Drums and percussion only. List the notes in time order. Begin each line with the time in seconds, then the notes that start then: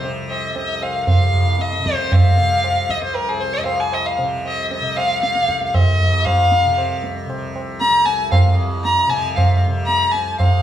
0.05 tabla tin
0.31 tabla na
0.56 tabla tin
0.83 tabla na
1.07 tabla na, tabla ge
1.33 tabla ge
1.59 tabla te
1.73 tabla te
1.86 tabla ke
1.98 tabla te
2.12 tabla na, tabla ge
2.37 tabla te
2.64 tabla na
2.89 tabla ke
3.02 tabla te
3.15 tabla na
3.40 tabla na
3.66 tabla na
3.93 tabla na
4.19 tabla tin
4.45 tabla na
4.71 tabla tin
4.98 tabla na
5.23 tabla te
5.35 tabla te
5.49 tabla ke
5.61 tabla te
5.74 tabla na, tabla ge
6.01 tabla ge
6.26 tabla na, tabla ge
6.52 tabla te
6.78 tabla na
7.04 tabla te
7.30 tabla na
7.56 tabla na
7.81 tabla te
8.07 tabla te
8.32 tabla na, tabla ge
8.85 tabla te
9.11 tabla te
9.38 tabla na, tabla ge
9.89 tabla te
10.14 tabla te
10.40 tabla na, tabla ge